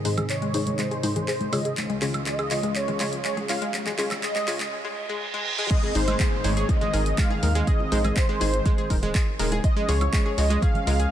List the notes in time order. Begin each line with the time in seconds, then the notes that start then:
Already playing: G#2 C3 D#3 G#4 D#5, riser
0.05 G#2 G#3 D#4 C5, open hi-hat
0.17 G#4, closed hi-hat, high conga, low conga, high woodblock
0.30 C#5, clap, closed hi-hat
0.42 G#3, closed hi-hat
0.54 G#2 G#3 D#4 G#4 C5, open hi-hat
0.67 closed hi-hat, high conga
0.79 G#3 C5, clap, closed hi-hat
0.91 G#4, closed hi-hat
1.03 G#2 G#3 D#4 C5, open hi-hat, high bongo, high conga
1.16 G#3, closed hi-hat, low conga
1.28 G#4 C5, clap, open hi-hat
1.41 closed hi-hat, high conga
1.52 C#3 G#3 F4 C#5 D#5, open hi-hat, high bongo, high woodblock
1.65 G#4, closed hi-hat
1.77 C#2 C#3 G#3 F4, clap, closed hi-hat, high conga
1.90 G#3, closed hi-hat
2.02 C#3 G#3 F4 G#4 C#5, clap, open hi-hat
2.14 closed hi-hat, high conga, high woodblock
2.26 G#3 D#5, clap, closed hi-hat
2.39 G#4, closed hi-hat, high woodblock
2.51 C#3 G#3 F4 C#5, clap, open hi-hat
2.63 G#3, closed hi-hat, high bongo, high conga
2.75 C#5, clap, closed hi-hat
2.88 G#3, closed hi-hat, high bongo, low conga
3.00 C#3 G#3 F4 G#4 C#5, clap, open hi-hat, high conga
3.13 closed hi-hat
3.25 G#3 C#5, clap, closed hi-hat
3.37 G#4, closed hi-hat, high conga
3.49 C#3 G#3 F4 C#5 F5, clap, open hi-hat
3.62 G#3, closed hi-hat
3.73 clap, closed hi-hat, high conga
3.86 G#3, clap, closed hi-hat, low conga
3.98 C#3 G#3 F4 G#4 C#5, clap, open hi-hat
4.11 clap, closed hi-hat, high conga, low conga, high woodblock
4.23 D#5, clap, closed hi-hat
4.36 G#3, clap, closed hi-hat
4.48 C#3 G#3 F4 G#4 C#5, clap, open hi-hat
4.60 clap, closed hi-hat, high conga
4.72 reverse cymbal
4.85 G#3
5.09 G#3
5.34 G#3
5.58 G#3
5.71 D#3 G#3 C4 D#5, kick, closed hi-hat, crash, downlifter
5.83 G#4, high bongo
5.95 G#1 G#2 G#3 D#4 C5, open hi-hat
6.08 G#3, closed hi-hat, high conga, high woodblock
6.20 G#4, kick, clap, closed hi-hat, high bongo
6.44 G#1 G#2 G#3 D#4 C5 C#5, open hi-hat, high bongo
6.57 G#4, closed hi-hat
6.69 D#5, kick, closed hi-hat, high bongo
6.81 G#3, closed hi-hat, high conga, low conga
6.93 G#1 G#2 G#3 D#4 G#4 A#4, open hi-hat, high bongo
7.06 closed hi-hat
7.18 G#3 F5, kick, clap, closed hi-hat
7.30 G#4, high bongo
7.43 D#2 G#2 G#3 D#4 A#4, open hi-hat, high conga
7.55 G#3, closed hi-hat, high bongo
7.67 G#4 D#5, kick, closed hi-hat
7.80 high bongo, low conga
7.92 A#1 G#2 G#3 D#4 C5, open hi-hat
8.04 G#4, closed hi-hat, high bongo, high conga, low conga, high woodblock
8.16 C5, kick, clap, closed hi-hat
8.29 G#3
8.40 G#1 G#2 G#3 D#4 G#4 C5, open hi-hat, high bongo
8.54 closed hi-hat
8.66 G#3, kick, closed hi-hat, high bongo
8.78 G#4, closed hi-hat, high conga
8.90 D#1 G#2 G#3 D#4 A#4, kick, open hi-hat, high bongo
9.03 G#3, closed hi-hat, low conga
9.15 G#4, kick, clap, closed hi-hat, high bongo
9.39 D#1 C#3 G#3 D#4 A#4, open hi-hat, high conga
9.52 G#4, closed hi-hat, high bongo
9.64 F3 C#4 D#5, kick, closed hi-hat
9.76 G#3, high bongo
9.89 C#2 C#3 G#3 F4 G#4 C#5, open hi-hat
10.01 closed hi-hat, high bongo, high conga, high woodblock
10.13 G#3, kick, clap, closed hi-hat
10.26 G#4, high bongo
10.38 C#2 C#3 G#3 F4 C#5 D#5, open hi-hat
10.50 G#3, closed hi-hat
10.62 G#4 F5, kick, closed hi-hat, high bongo
10.74 closed hi-hat, high conga, low conga
10.87 C#2 C#3 G#3 F4 A#4, open hi-hat, high bongo
11.00 G#4, closed hi-hat